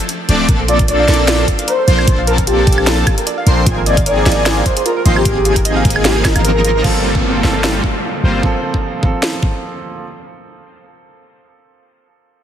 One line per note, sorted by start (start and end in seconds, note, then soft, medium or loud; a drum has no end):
0.09 closed hi-hat medium
0.29 0.47 D1 loud
0.29 0.46 F3 medium
0.29 0.46 A3 medium
0.29 0.46 C4 medium
0.29 0.46 D4 medium
0.29 0.46 D5 medium
0.29 0.46 D6 loud
0.29 closed hi-hat medium
0.48 1.06 A#1 medium
0.48 1.06 F3 medium
0.48 1.06 A#3 medium
0.48 1.06 C4 medium
0.48 1.06 D4 medium
0.48 1.06 A4 loud
0.48 0.54 A#4 medium
0.48 1.06 A5 loud
0.48 kick loud
0.48 closed hi-hat medium
0.59 0.63 A4 medium
0.68 0.71 F4 loud
0.68 0.81 D5 loud
0.68 closed hi-hat medium
0.79 0.84 A#4 medium
0.79 kick loud
0.79 closed hi-hat medium
0.88 1.44 D5 medium
0.88 0.92 D5 medium
0.88 closed hi-hat medium
0.99 1.04 F5 loud
1.08 1.44 A#1 loud
1.08 1.46 F3 loud
1.08 1.46 A#3 medium
1.08 1.46 C4 medium
1.08 1.46 D4 medium
1.08 1.46 A4 loud
1.08 1.14 A#4 medium
1.08 1.46 A5 loud
1.08 snare medium
1.08 closed hi-hat soft
1.14 closed hi-hat medium
1.19 1.22 A4 medium
1.28 1.30 F4 loud
1.28 snare loud
1.28 closed hi-hat medium
1.39 1.44 A#4 medium
1.48 1.52 D5 medium
1.48 kick medium
1.48 closed hi-hat medium
1.59 1.64 F5 loud
1.59 closed hi-hat medium
1.68 1.74 A#4 medium
1.68 2.24 C5 loud
1.68 closed hi-hat medium
1.79 1.82 A4 medium
1.88 2.06 A#1 loud
1.88 2.05 F3 medium
1.88 2.05 A#3 medium
1.88 2.05 C4 medium
1.88 2.05 D4 medium
1.88 1.90 F4 loud
1.88 2.05 C5 medium
1.88 2.05 C6 medium
1.88 closed hi-hat medium
1.98 2.03 A#4 medium
1.98 high woodblock medium
2.07 2.65 A#1 loud
2.07 2.65 F3 medium
2.07 2.65 A#3 medium
2.07 2.65 C4 medium
2.07 2.65 D4 medium
2.07 2.65 A4 medium
2.07 2.11 D5 medium
2.07 2.65 A5 medium
2.07 kick loud
2.07 closed hi-hat medium
2.18 2.23 F5 loud
2.27 2.33 A#4 medium
2.27 2.34 A#4 medium
2.27 closed hi-hat medium
2.38 2.41 A4 medium
2.38 2.44 A#4 medium
2.38 kick medium
2.38 closed hi-hat medium
2.47 2.50 F4 loud
2.47 2.87 G4 loud
2.47 closed hi-hat medium
2.58 2.63 A#4 medium
2.67 3.03 A#1 loud
2.67 3.05 F3 loud
2.67 3.05 A#3 medium
2.67 3.05 C4 medium
2.67 3.05 D4 medium
2.67 3.05 A4 loud
2.67 2.71 D5 medium
2.67 3.05 A5 loud
2.67 kick loud
2.67 closed hi-hat soft
2.73 closed hi-hat medium
2.78 2.83 F5 loud
2.78 high woodblock medium
2.87 2.93 A#4 medium
2.87 snare loud
2.87 closed hi-hat medium
2.98 3.01 A4 medium
3.07 3.09 F4 loud
3.07 kick loud
3.07 closed hi-hat medium
3.07 high woodblock medium
3.18 3.23 A#4 medium
3.18 closed hi-hat medium
3.27 3.31 D5 medium
3.27 closed hi-hat medium
3.38 3.42 F5 loud
3.46 3.65 A#1 loud
3.46 3.64 F3 medium
3.46 3.64 A#3 medium
3.46 3.64 C4 medium
3.46 3.64 D4 medium
3.46 3.52 A#4 medium
3.46 3.64 C5 loud
3.46 3.64 C6 medium
3.46 closed hi-hat medium
3.58 3.61 A4 medium
3.66 4.24 G#1 loud
3.66 4.24 F3 medium
3.66 4.24 A#3 medium
3.66 4.24 C4 medium
3.66 4.24 D#4 medium
3.66 3.69 F4 loud
3.66 4.24 G#4 loud
3.66 4.24 G#5 medium
3.66 kick loud
3.66 closed hi-hat medium
3.77 3.82 A#4 medium
3.86 3.99 D5 loud
3.86 3.90 D#5 medium
3.86 closed hi-hat medium
3.97 4.02 F5 loud
3.97 kick loud
3.97 closed hi-hat medium
4.06 4.12 A#4 medium
4.06 4.62 D5 medium
4.06 closed hi-hat medium
4.17 4.20 G#4 medium
4.26 4.62 G#1 loud
4.26 4.64 F3 loud
4.26 4.64 A#3 medium
4.26 4.64 C4 medium
4.26 4.64 D#4 medium
4.26 4.28 F4 loud
4.26 4.64 G#4 loud
4.26 4.64 G#5 loud
4.26 snare medium
4.26 closed hi-hat soft
4.32 closed hi-hat medium
4.37 4.42 A#4 medium
4.46 4.50 D#5 medium
4.46 snare loud
4.46 closed hi-hat medium
4.57 4.62 F5 loud
4.66 4.72 A#4 medium
4.66 4.73 C5 medium
4.66 kick medium
4.66 closed hi-hat medium
4.77 4.80 G#4 medium
4.77 4.82 C5 medium
4.77 closed hi-hat medium
4.86 4.88 F4 loud
4.86 4.93 A#4 medium
4.86 closed hi-hat medium
4.97 5.01 A#4 medium
4.97 5.02 A#4 medium
5.05 5.24 G#1 loud
5.05 5.23 F3 medium
5.05 5.23 A#3 medium
5.05 5.23 C4 medium
5.05 5.23 D#4 medium
5.05 5.23 C5 loud
5.05 5.09 D#5 medium
5.05 5.23 C6 medium
5.05 closed hi-hat medium
5.16 5.56 G4 loud
5.16 5.21 F5 loud
5.16 high woodblock medium
5.25 5.83 G#1 loud
5.25 5.83 F3 medium
5.25 5.83 A#3 medium
5.25 5.83 C4 medium
5.25 5.83 D#4 medium
5.25 5.83 G#4 loud
5.25 5.31 A#4 medium
5.25 5.83 G#5 medium
5.25 kick loud
5.25 closed hi-hat medium
5.36 5.39 G#4 medium
5.45 5.48 F4 loud
5.45 closed hi-hat medium
5.56 5.61 A#4 medium
5.56 kick medium
5.56 closed hi-hat medium
5.65 5.69 D#5 medium
5.65 closed hi-hat medium
5.76 5.81 F5 loud
5.85 6.33 G#1 loud
5.85 6.23 F3 loud
5.85 6.23 A#3 medium
5.85 6.23 C4 medium
5.85 6.23 D#4 medium
5.85 6.23 G#4 loud
5.85 5.91 A#4 medium
5.85 6.23 G#5 loud
5.85 kick loud
5.85 closed hi-hat medium
5.90 closed hi-hat medium
5.96 5.99 G#4 medium
5.96 high woodblock medium
6.05 6.07 F4 loud
6.05 6.17 G4 medium
6.05 snare loud
6.05 closed hi-hat medium
6.16 6.21 A#4 medium
6.25 6.81 A#4 loud
6.25 6.29 D#5 medium
6.25 kick loud
6.25 snare medium
6.25 closed hi-hat medium
6.25 high woodblock medium
6.36 6.83 G#1 loud
6.36 6.82 F3 medium
6.36 6.82 A#3 medium
6.36 6.82 C4 medium
6.36 6.82 D#4 medium
6.36 6.82 A#4 medium
6.36 6.40 F5 loud
6.36 6.82 A#5 medium
6.36 closed hi-hat medium
6.36 high woodblock medium
6.45 6.50 A#4 medium
6.45 closed hi-hat medium
6.55 6.59 G#4 medium
6.64 6.67 F4 loud
6.64 closed hi-hat medium
6.75 6.80 A#4 medium
6.82 7.42 G1 medium
6.82 7.40 F3 medium
6.82 7.42 G3 medium
6.82 7.41 A#3 medium
6.82 7.42 A#3 medium
6.82 7.42 C4 medium
6.82 7.42 F4 medium
6.82 7.42 A4 medium
6.82 kick loud
6.82 crash medium
6.82 downlifter medium
6.86 7.43 A4 loud
7.15 kick loud
7.42 7.80 G1 medium
7.42 8.40 F3 medium
7.42 7.82 G3 medium
7.42 8.41 A#3 medium
7.42 7.82 A#3 medium
7.42 7.82 C4 medium
7.42 8.41 C4 medium
7.42 7.82 F4 medium
7.42 7.82 A4 loud
7.42 snare medium
7.46 8.42 A4 medium
7.64 snare loud
7.84 kick medium
8.23 8.41 G1 medium
8.23 8.41 G3 medium
8.23 8.41 A#3 medium
8.23 8.41 C4 medium
8.23 8.41 F4 medium
8.23 8.41 C5 medium
8.41 8.99 F3 medium
8.41 9.00 A#3 medium
8.41 9.01 C4 medium
8.41 9.02 A4 loud
8.41 kick loud
8.74 kick medium
9.01 9.99 F3 medium
9.01 10.00 A#3 medium
9.01 10.00 C4 medium
9.01 kick loud
9.05 10.01 A4 medium
9.23 snare loud
9.43 kick loud